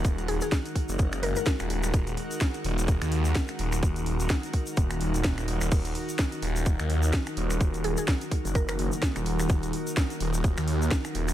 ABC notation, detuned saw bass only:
X:1
M:4/4
L:1/16
Q:"Swing 16ths" 1/4=127
K:Ebm
V:1 name="Detuned saw bass" clef=bass
E,,,3 z4 G,,,3 G,,, z2 E,,,3 | E,,,2 z4 E,,,3 E,,3 z2 E,,,2 | E,,,3 E,,, z4 E,,,2 E,,,3 E,,,2 E,,, | E,,,2 z4 E,,,3 E,,3 z2 E,,,2 |
E,,,3 z4 G,,,3 G,,, z2 E,,,3 | E,,,2 z4 E,,,3 E,,3 z2 E,,,2 |]